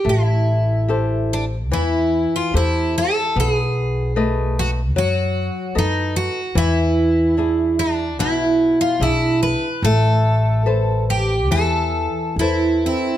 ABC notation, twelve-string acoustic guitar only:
X:1
M:4/4
L:1/16
Q:1/4=73
K:Am
V:1 name="Twelve-string acoustic guitar"
E6 D2 E3 F E2 A2 | ^G6 ^F2 F4 ^D2 F2 | E6 D2 E3 F E2 B2 | A6 G2 A4 E2 E2 |]